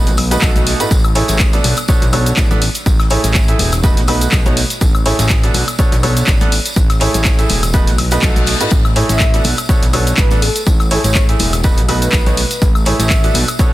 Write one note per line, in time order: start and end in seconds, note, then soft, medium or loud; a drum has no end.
0.07 0.37 B1 loud
0.07 snare soft
0.07 closed hi-hat medium
0.07 tambourine soft
0.07 shaker soft
0.17 open hi-hat loud
0.17 tambourine medium
0.17 high conga medium
0.17 high woodblock medium
0.31 0.41 B2 medium
0.31 0.41 A3 medium
0.31 0.41 D#4 medium
0.31 0.41 F#4 medium
0.31 0.41 B4 loud
0.31 closed hi-hat medium
0.31 tambourine medium
0.31 shaker medium
0.42 0.74 B1 medium
0.42 0.77 B2 medium
0.42 0.77 A3 medium
0.42 0.77 D#4 medium
0.42 0.77 F#4 medium
0.42 0.77 A4 loud
0.42 kick loud
0.42 snare loud
0.42 clap loud
0.42 tambourine medium
0.42 shaker medium
0.56 closed hi-hat soft
0.56 tambourine soft
0.56 high conga medium
0.56 shaker soft
0.67 open hi-hat loud
0.67 tambourine medium
0.80 0.90 A2 medium
0.80 0.90 A3 medium
0.80 0.90 D#4 medium
0.80 0.90 F#4 medium
0.80 0.90 B4 medium
0.80 closed hi-hat medium
0.80 tambourine medium
0.80 shaker medium
0.91 1.23 A1 loud
0.91 kick loud
0.91 tambourine medium
0.91 tambourine loud
0.91 high conga medium
0.91 shaker medium
1.04 closed hi-hat soft
1.04 tambourine soft
1.04 high woodblock medium
1.04 shaker soft
1.15 1.50 A2 medium
1.15 1.50 A3 medium
1.15 1.50 E4 medium
1.15 1.50 G#4 medium
1.15 1.50 C#5 loud
1.15 snare soft
1.15 open hi-hat loud
1.15 tambourine medium
1.28 1.59 A1 medium
1.28 snare medium
1.28 closed hi-hat medium
1.28 tambourine medium
1.28 high conga medium
1.28 shaker medium
1.39 kick loud
1.39 snare loud
1.39 clap loud
1.39 tambourine medium
1.39 shaker medium
1.53 1.74 B2 medium
1.53 1.74 B3 medium
1.53 1.74 D4 medium
1.53 1.74 A4 medium
1.53 1.74 D5 medium
1.53 snare soft
1.53 closed hi-hat medium
1.53 tambourine soft
1.53 shaker soft
1.64 1.74 B1 medium
1.64 open hi-hat loud
1.64 tambourine medium
1.64 high conga medium
1.77 closed hi-hat medium
1.77 tambourine medium
1.77 high woodblock medium
1.77 shaker medium
1.88 2.03 B2 medium
1.88 2.03 B3 medium
1.88 2.03 D4 medium
1.88 2.03 A4 medium
1.88 2.03 C#5 loud
1.88 kick loud
1.88 tambourine medium
1.88 shaker medium
2.02 2.33 B1 medium
2.02 snare soft
2.02 closed hi-hat medium
2.02 tambourine soft
2.02 shaker soft
2.13 2.48 B2 medium
2.13 2.48 B3 medium
2.13 2.48 D4 medium
2.13 2.48 A4 medium
2.13 2.48 C#5 medium
2.13 open hi-hat loud
2.13 tambourine medium
2.13 high conga medium
2.13 high woodblock medium
2.26 closed hi-hat medium
2.26 tambourine medium
2.26 shaker medium
2.37 2.69 A1 medium
2.37 kick loud
2.37 snare loud
2.37 clap loud
2.37 tambourine medium
2.37 shaker medium
2.51 2.60 B3 medium
2.51 2.60 D4 medium
2.51 2.60 A4 medium
2.51 2.60 D5 loud
2.51 snare medium
2.51 closed hi-hat soft
2.51 tambourine soft
2.51 high conga loud
2.51 shaker soft
2.61 open hi-hat loud
2.61 tambourine medium
2.75 closed hi-hat medium
2.75 tambourine medium
2.75 shaker medium
2.86 3.18 A1 loud
2.86 kick loud
2.86 tambourine medium
2.86 high conga medium
2.86 shaker medium
2.99 snare soft
2.99 tambourine soft
2.99 high woodblock medium
2.99 shaker soft
3.10 3.45 A2 medium
3.10 3.45 A3 medium
3.10 3.45 E4 medium
3.10 3.45 G#4 medium
3.10 3.45 C#5 loud
3.10 open hi-hat loud
3.10 tambourine medium
3.24 3.54 A1 medium
3.24 snare soft
3.24 closed hi-hat medium
3.24 tambourine medium
3.24 high conga medium
3.24 shaker medium
3.34 kick loud
3.34 snare loud
3.34 clap loud
3.34 tambourine loud
3.34 tambourine medium
3.34 shaker medium
3.48 3.69 A2 medium
3.48 3.69 A3 medium
3.48 3.69 E4 medium
3.48 3.69 G#4 medium
3.48 3.69 E5 medium
3.48 closed hi-hat medium
3.48 tambourine soft
3.48 shaker soft
3.59 3.99 E1 medium
3.59 open hi-hat loud
3.59 tambourine medium
3.59 high conga medium
3.72 snare soft
3.72 closed hi-hat medium
3.72 tambourine medium
3.72 high woodblock medium
3.72 shaker medium
3.83 3.98 B2 medium
3.83 3.98 A3 medium
3.83 3.98 D#4 medium
3.83 3.98 F#4 medium
3.83 3.98 B4 loud
3.83 kick loud
3.83 tambourine loud
3.83 tambourine medium
3.83 shaker medium
3.97 4.28 B1 loud
3.97 snare soft
3.97 closed hi-hat medium
3.97 tambourine soft
3.97 shaker soft
4.08 4.43 B2 medium
4.08 4.43 A3 medium
4.08 4.43 D#4 medium
4.08 4.43 F#4 medium
4.08 4.43 B4 medium
4.08 open hi-hat loud
4.08 tambourine medium
4.08 high conga medium
4.08 high woodblock medium
4.21 closed hi-hat medium
4.21 tambourine medium
4.21 shaker medium
4.32 4.64 B1 medium
4.32 kick loud
4.32 snare loud
4.32 clap loud
4.32 tambourine medium
4.32 shaker medium
4.45 4.58 B2 medium
4.45 4.58 A3 medium
4.45 4.58 D#4 medium
4.45 4.58 F#4 medium
4.45 4.58 C#5 loud
4.45 closed hi-hat soft
4.45 tambourine soft
4.45 high conga medium
4.45 shaker soft
4.57 open hi-hat loud
4.57 tambourine medium
4.70 closed hi-hat medium
4.70 tambourine medium
4.70 shaker medium
4.81 5.13 A1 loud
4.81 kick loud
4.81 tambourine medium
4.81 high conga loud
4.81 shaker medium
4.94 closed hi-hat soft
4.94 tambourine soft
4.94 high woodblock medium
4.94 shaker soft
5.06 5.40 A2 medium
5.06 5.40 A3 medium
5.06 5.40 E4 medium
5.06 5.40 G#4 medium
5.06 5.40 C#5 loud
5.06 snare soft
5.06 open hi-hat loud
5.06 tambourine medium
5.19 5.50 A1 medium
5.19 snare medium
5.19 closed hi-hat medium
5.19 tambourine medium
5.19 high conga medium
5.19 shaker medium
5.29 kick loud
5.29 snare loud
5.29 clap loud
5.29 tambourine medium
5.29 tambourine loud
5.29 shaker medium
5.43 5.64 B2 medium
5.43 5.64 B3 medium
5.43 5.64 D4 medium
5.43 5.64 A4 medium
5.43 5.64 D5 medium
5.43 snare soft
5.43 closed hi-hat medium
5.43 tambourine soft
5.43 shaker soft
5.54 5.64 B1 medium
5.54 open hi-hat loud
5.54 tambourine medium
5.54 high conga medium
5.68 closed hi-hat medium
5.68 tambourine medium
5.68 high woodblock medium
5.68 shaker medium
5.79 5.93 B2 loud
5.79 5.93 B3 medium
5.79 5.93 D4 medium
5.79 5.93 A4 medium
5.79 5.93 C#5 loud
5.79 kick loud
5.79 tambourine medium
5.79 shaker medium
5.92 6.23 B1 loud
5.92 snare soft
5.92 closed hi-hat medium
5.92 tambourine soft
5.92 shaker soft
6.03 6.38 B2 medium
6.03 6.38 B3 medium
6.03 6.38 D4 medium
6.03 6.38 A4 medium
6.03 6.38 C#5 medium
6.03 open hi-hat loud
6.03 tambourine medium
6.03 high conga medium
6.03 high woodblock medium
6.17 closed hi-hat medium
6.17 tambourine medium
6.17 shaker medium
6.27 6.60 A1 medium
6.27 kick loud
6.27 snare loud
6.27 clap loud
6.27 tambourine medium
6.27 shaker medium
6.41 6.51 B3 medium
6.41 6.51 D4 medium
6.41 6.51 A4 medium
6.41 6.51 D5 loud
6.41 snare medium
6.41 closed hi-hat soft
6.41 tambourine soft
6.41 high conga loud
6.41 shaker soft
6.52 open hi-hat loud
6.52 tambourine medium
6.65 closed hi-hat medium
6.65 tambourine medium
6.65 shaker medium
6.76 7.08 A1 loud
6.76 kick loud
6.76 tambourine medium
6.76 high conga loud
6.76 shaker medium
6.90 snare medium
6.90 closed hi-hat soft
6.90 tambourine soft
6.90 high woodblock medium
6.90 shaker soft
7.00 7.35 A2 medium
7.00 7.35 A3 medium
7.00 7.35 E4 medium
7.00 7.35 G#4 medium
7.00 7.35 C#5 loud
7.00 snare loud
7.00 open hi-hat loud
7.00 tambourine medium
7.14 7.45 A1 medium
7.14 snare soft
7.14 closed hi-hat medium
7.14 tambourine medium
7.14 high conga medium
7.14 shaker medium
7.24 kick loud
7.24 snare loud
7.24 clap loud
7.24 tambourine medium
7.24 tambourine loud
7.24 shaker medium
7.39 7.60 A2 medium
7.39 7.60 A3 medium
7.39 7.59 E4 medium
7.39 7.60 G#4 medium
7.39 7.59 E5 medium
7.39 closed hi-hat medium
7.39 tambourine soft
7.39 shaker soft
7.49 7.89 E1 medium
7.49 open hi-hat loud
7.49 tambourine medium
7.49 high conga medium
7.62 snare soft
7.62 closed hi-hat medium
7.62 tambourine medium
7.62 high woodblock medium
7.62 shaker medium
7.74 7.88 B2 medium
7.74 7.88 A3 medium
7.74 7.88 D#4 medium
7.74 7.88 F#4 medium
7.74 7.88 B4 loud
7.74 kick loud
7.74 tambourine medium
7.74 reverse cymbal medium
7.74 shaker medium
7.87 8.18 B1 loud
7.87 snare soft
7.87 closed hi-hat medium
7.87 tambourine soft
7.87 shaker soft
7.98 open hi-hat loud
7.98 tambourine medium
7.98 high conga medium
7.98 high woodblock medium
8.11 8.21 B2 medium
8.11 8.21 A3 medium
8.11 8.21 D#4 medium
8.11 8.21 F#4 medium
8.11 8.21 B4 loud
8.11 snare soft
8.11 closed hi-hat medium
8.11 tambourine medium
8.11 shaker medium
8.22 8.55 B1 medium
8.22 8.57 B2 medium
8.22 8.57 A3 medium
8.22 8.57 D#4 medium
8.22 8.57 F#4 medium
8.22 8.57 A4 loud
8.22 kick loud
8.22 clap loud
8.22 tambourine medium
8.22 shaker medium
8.36 closed hi-hat soft
8.36 tambourine soft
8.36 high conga loud
8.36 shaker soft
8.46 snare loud
8.46 open hi-hat loud
8.46 tambourine medium
8.60 8.70 A2 medium
8.60 8.70 A3 medium
8.60 8.70 D#4 medium
8.60 8.70 F#4 medium
8.60 8.70 B4 medium
8.60 closed hi-hat medium
8.60 tambourine medium
8.60 shaker medium
8.71 9.03 A1 loud
8.71 kick loud
8.71 tambourine medium
8.71 high conga loud
8.71 shaker medium
8.85 closed hi-hat soft
8.85 tambourine soft
8.85 high woodblock medium
8.85 shaker soft
8.96 9.30 A2 medium
8.96 9.30 A3 medium
8.96 9.30 E4 medium
8.96 9.30 G#4 medium
8.96 9.30 C#5 loud
8.96 snare soft
8.96 open hi-hat loud
8.96 tambourine medium
9.09 9.40 A1 medium
9.09 9.45 E5 loud
9.09 snare medium
9.09 closed hi-hat medium
9.09 tambourine medium
9.09 high conga medium
9.09 shaker medium
9.20 kick loud
9.20 snare loud
9.20 clap loud
9.20 tambourine medium
9.20 shaker medium
9.34 9.55 B2 medium
9.34 9.55 B3 medium
9.34 9.55 D4 medium
9.34 9.55 A4 medium
9.34 9.55 D5 medium
9.34 snare soft
9.34 closed hi-hat medium
9.34 tambourine soft
9.34 shaker soft
9.44 9.54 B1 medium
9.44 open hi-hat loud
9.44 tambourine medium
9.44 high conga medium
9.57 closed hi-hat medium
9.57 tambourine medium
9.57 high woodblock medium
9.57 shaker medium
9.69 9.83 B2 medium
9.69 9.83 B3 medium
9.69 9.83 D4 medium
9.69 9.83 A4 medium
9.69 9.83 C#5 loud
9.69 kick loud
9.69 tambourine medium
9.69 shaker medium
9.82 10.13 B1 medium
9.82 snare soft
9.82 closed hi-hat medium
9.82 tambourine soft
9.82 shaker soft
9.93 10.28 B2 medium
9.93 10.28 B3 medium
9.93 10.28 D4 medium
9.93 10.28 A4 medium
9.93 10.28 C#5 medium
9.93 open hi-hat loud
9.93 tambourine medium
9.93 high conga medium
9.93 high woodblock medium
10.07 closed hi-hat medium
10.07 tambourine medium
10.07 shaker medium
10.17 10.50 A1 medium
10.17 10.40 B4 medium
10.17 kick loud
10.17 snare loud
10.17 clap loud
10.17 tambourine medium
10.17 shaker medium
10.31 10.41 B3 medium
10.31 10.41 D4 medium
10.31 10.41 A4 medium
10.31 10.41 D5 loud
10.31 snare medium
10.31 closed hi-hat soft
10.31 tambourine soft
10.31 high conga loud
10.31 shaker soft
10.42 10.61 A4 loud
10.42 open hi-hat loud
10.42 tambourine medium
10.55 closed hi-hat medium
10.55 tambourine medium
10.55 shaker medium
10.66 10.99 A1 loud
10.66 kick loud
10.66 tambourine medium
10.66 high conga loud
10.66 shaker medium
10.80 snare medium
10.80 tambourine soft
10.80 high woodblock medium
10.80 shaker soft
10.91 11.26 A2 medium
10.91 11.26 A3 medium
10.91 11.26 E4 medium
10.91 11.26 G#4 medium
10.91 11.02 A4 medium
10.91 11.26 C#5 loud
10.91 open hi-hat loud
10.91 tambourine medium
11.04 11.35 A1 medium
11.04 11.22 C#5 loud
11.04 snare soft
11.04 closed hi-hat medium
11.04 tambourine medium
11.04 high conga medium
11.04 shaker medium
11.15 kick loud
11.15 snare loud
11.15 clap loud
11.15 tambourine medium
11.15 tambourine loud
11.15 shaker medium
11.29 11.50 A2 medium
11.29 11.50 A3 medium
11.29 11.50 E4 medium
11.29 11.50 G#4 medium
11.29 11.50 E5 medium
11.29 closed hi-hat medium
11.29 tambourine soft
11.29 shaker soft
11.39 11.79 E1 medium
11.39 open hi-hat loud
11.39 tambourine medium
11.39 high conga loud
11.53 snare soft
11.53 closed hi-hat medium
11.53 tambourine medium
11.53 high woodblock medium
11.53 shaker medium
11.63 11.79 B2 medium
11.63 11.79 A3 medium
11.63 11.79 D#4 medium
11.63 11.79 F#4 medium
11.63 11.79 B4 loud
11.63 kick loud
11.63 tambourine medium
11.63 shaker medium
11.77 12.08 B1 loud
11.77 snare soft
11.77 closed hi-hat medium
11.77 tambourine soft
11.77 shaker soft
11.89 12.23 B2 medium
11.89 12.23 A3 medium
11.89 12.23 D#4 medium
11.89 12.23 F#4 medium
11.89 12.23 B4 medium
11.89 open hi-hat loud
11.89 tambourine medium
11.89 high conga medium
11.89 high woodblock medium
12.02 12.67 B4 loud
12.02 closed hi-hat medium
12.02 tambourine medium
12.02 shaker medium
12.12 12.45 B1 medium
12.12 kick loud
12.12 snare loud
12.12 clap loud
12.12 tambourine medium
12.12 shaker medium
12.26 12.39 B2 medium
12.26 12.39 A3 medium
12.26 12.39 D#4 medium
12.26 12.39 F#4 medium
12.26 12.39 C#5 loud
12.26 closed hi-hat soft
12.26 tambourine soft
12.26 high conga medium
12.26 shaker soft
12.37 open hi-hat loud
12.37 tambourine medium
12.51 closed hi-hat medium
12.51 tambourine medium
12.51 shaker medium
12.62 12.94 A1 loud
12.62 kick loud
12.62 tambourine medium
12.62 high conga loud
12.62 shaker medium
12.75 closed hi-hat soft
12.75 tambourine soft
12.75 high woodblock medium
12.75 shaker soft
12.85 13.21 A2 medium
12.85 13.21 A3 medium
12.85 13.21 E4 medium
12.85 13.21 G#4 medium
12.85 13.21 C#5 loud
12.85 snare soft
12.85 open hi-hat loud
12.85 tambourine medium
12.99 13.30 A1 medium
12.99 13.35 E5 loud
12.99 snare medium
12.99 closed hi-hat medium
12.99 tambourine medium
12.99 high conga medium
12.99 shaker medium
13.10 kick loud
13.10 snare loud
13.10 clap loud
13.10 tambourine medium
13.10 shaker medium
13.24 13.45 B2 medium
13.24 13.45 B3 medium
13.24 13.45 D4 medium
13.24 13.45 A4 medium
13.24 13.45 D5 medium
13.24 snare soft
13.24 closed hi-hat medium
13.24 tambourine soft
13.24 shaker soft
13.34 13.45 B1 loud
13.34 open hi-hat loud
13.34 tambourine medium
13.34 high conga loud
13.48 closed hi-hat medium
13.48 tambourine medium
13.48 high woodblock medium
13.48 shaker medium
13.59 13.73 B2 loud
13.59 13.73 B3 medium
13.59 13.73 D4 medium
13.59 13.73 A4 medium
13.59 13.73 C#5 loud
13.59 kick loud
13.59 tambourine medium
13.59 shaker medium